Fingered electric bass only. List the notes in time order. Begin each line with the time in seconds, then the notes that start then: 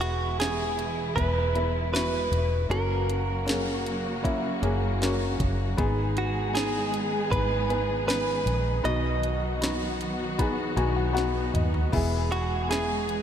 Already playing: E1
1.16 E1
2.32 E1
2.70 F#1
4.62 F#1
5.40 F#1
5.78 G#1
7.32 G#1
8.46 A#1
8.85 B1
10.77 B1
11.54 D#2
11.93 E1